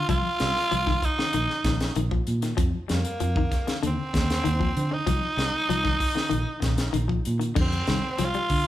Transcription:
0.09 0.21 C2 medium
0.09 0.27 F3 medium
0.09 1.06 F4 loud
0.09 kick loud
0.09 closed hi-hat medium
0.40 0.53 C2 loud
0.40 0.59 G3 medium
0.40 snare medium
0.40 closed hi-hat medium
0.56 snare soft
0.71 0.97 C2 medium
0.71 0.80 F3 medium
0.71 closed hi-hat medium
0.87 1.05 D#3 medium
0.87 kick medium
0.87 snare soft
1.02 1.97 D#4 loud
1.02 kick medium
1.02 closed hi-hat medium
1.19 1.28 D#3 medium
1.19 snare medium
1.33 1.46 A#1 medium
1.33 1.52 D#3 medium
1.33 closed hi-hat medium
1.50 snare soft
1.64 1.89 A#1 medium
1.64 1.84 D#3 medium
1.64 kick medium
1.64 snare medium
1.64 closed hi-hat medium
1.80 snare medium
1.80 closed hi-hat medium
1.96 2.21 A#1 loud
1.96 2.05 D#3 medium
1.96 closed hi-hat medium
2.11 2.30 F3 medium
2.11 kick medium
2.27 2.52 A#2 medium
2.27 closed hi-hat medium
2.42 2.52 D#3 medium
2.42 snare soft
2.42 closed hi-hat medium
2.57 2.70 F2 medium
2.57 2.76 F3 medium
2.57 kick loud
2.57 closed hi-hat medium
2.88 3.02 F2 medium
2.88 3.07 G3 medium
2.88 3.80 A#3 medium
2.88 snare medium
2.88 closed hi-hat medium
3.05 closed hi-hat medium
3.20 3.46 F2 medium
3.20 3.30 F3 medium
3.20 closed hi-hat medium
3.36 3.55 D#3 medium
3.36 kick medium
3.52 kick medium
3.52 snare soft
3.52 closed hi-hat soft
3.67 3.76 D#3 medium
3.67 snare medium
3.67 closed hi-hat soft
3.83 3.95 D#2 medium
3.83 4.01 D3 medium
3.83 closed hi-hat medium
3.87 4.95 C4 loud
4.13 4.39 D#2 medium
4.13 4.32 D3 medium
4.13 kick medium
4.13 snare medium
4.13 closed hi-hat medium
4.30 snare medium
4.30 closed hi-hat soft
4.44 4.71 D#2 loud
4.44 4.53 D#3 medium
4.44 closed hi-hat medium
4.60 4.78 F3 medium
4.60 kick medium
4.77 5.01 D3 medium
4.77 closed hi-hat soft
4.91 5.01 D3 medium
4.91 7.26 D#4 loud
5.07 5.20 C2 loud
5.07 5.25 F3 loud
5.07 kick medium
5.07 snare soft
5.07 closed hi-hat medium
5.37 5.50 C2 medium
5.37 5.56 G3 medium
5.37 snare medium
5.37 closed hi-hat medium
5.69 5.95 C2 medium
5.69 5.79 F3 medium
5.69 closed hi-hat medium
5.84 6.03 D#3 medium
5.84 kick medium
5.84 snare soft
6.00 kick medium
6.00 open hi-hat medium
6.15 6.25 D#3 medium
6.15 snare medium
6.29 6.44 A#1 medium
6.29 6.49 D#3 medium
6.29 closed hi-hat medium
6.60 6.88 A#1 medium
6.60 6.79 D#3 medium
6.60 kick medium
6.60 snare medium
6.60 closed hi-hat medium
6.78 snare medium
6.78 closed hi-hat medium
6.93 7.19 A#1 loud
6.93 7.02 D#3 medium
6.93 closed hi-hat medium
7.08 7.27 F3 medium
7.08 kick medium
7.25 7.51 A#2 medium
7.25 closed hi-hat medium
7.39 7.49 D#3 medium
7.39 closed hi-hat soft
7.55 7.81 F2 medium
7.55 7.74 D3 medium
7.55 kick loud
7.55 crash loud
7.61 8.26 C4 loud
7.72 closed hi-hat soft
7.87 8.01 C2 loud
7.87 8.06 D#3 medium
7.87 snare medium
7.87 closed hi-hat medium
8.18 8.32 C2 medium
8.18 8.28 F3 medium
8.18 snare soft
8.18 closed hi-hat medium
8.25 8.67 F4 loud
8.34 8.53 G3 medium
8.34 closed hi-hat soft
8.50 8.63 D3 medium
8.50 kick medium
8.50 open hi-hat medium

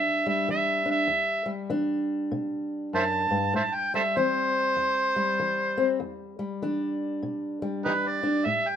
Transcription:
0.00 0.43 B2 medium
0.00 0.26 G3 medium
0.00 0.84 D4 medium
0.00 0.27 E5 medium
0.26 1.45 G3 medium
0.26 0.48 E5 medium
0.48 1.05 E3 medium
0.48 0.89 E5 medium
0.86 1.06 D4 medium
0.91 1.49 E5 medium
1.07 1.65 E2 medium
1.46 2.96 G3 medium
1.70 2.27 E3 medium
1.70 3.52 D4 medium
2.31 2.89 B2 medium
2.93 3.30 F#2 medium
2.93 3.03 C5 medium
2.93 3.03 E5 medium
2.93 3.54 A5 medium
3.30 3.54 G2 medium
3.53 4.11 A2 medium
3.53 3.62 C5 medium
3.53 3.62 E5 medium
3.53 3.76 A5 medium
3.74 3.94 G5 medium
3.94 5.16 G3 medium
3.94 4.03 A4 medium
3.94 4.01 C5 medium
3.94 4.19 E5 medium
4.17 4.73 E3 medium
4.17 5.76 C4 medium
4.17 5.97 C5 loud
4.76 5.34 E2 medium
5.16 6.39 G3 medium
5.39 5.96 E3 medium
5.77 5.98 C4 medium
6.00 6.57 E2 medium
6.39 7.62 G3 medium
6.62 7.19 E3 medium
6.62 8.22 D4 medium
7.23 7.80 B2 medium
7.62 8.76 G3 medium
7.85 8.42 E3 medium
7.85 7.93 D#4 medium
7.85 7.93 G4 medium
7.85 8.09 B4 medium
8.08 8.47 D5 medium
8.23 8.43 D4 medium
8.46 8.76 A2 medium
8.46 8.70 E5 medium
8.68 8.76 G5 medium

